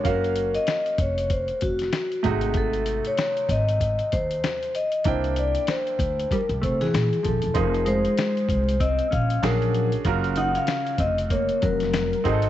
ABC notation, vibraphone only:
X:1
M:4/4
L:1/16
Q:"Swing 16ths" 1/4=96
K:Ebdor
V:1 name="Vibraphone"
B3 e3 d2 c2 G4 A2 | =A3 d3 e4 c4 e2 | c2 =d2 c4 B2 c A3 =A2 | B2 c6 e2 f2 B3 z |
z2 g f3 e2 d2 B4 e2 |]